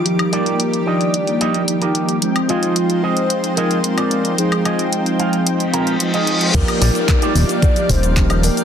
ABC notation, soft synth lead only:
X:1
M:4/4
L:1/8
Q:1/4=111
K:Eb
V:1 name="Soft synth lead"
G B2 d4 z | z F2 c2 B3 | A3 z4 z | B3 d d c2 B |]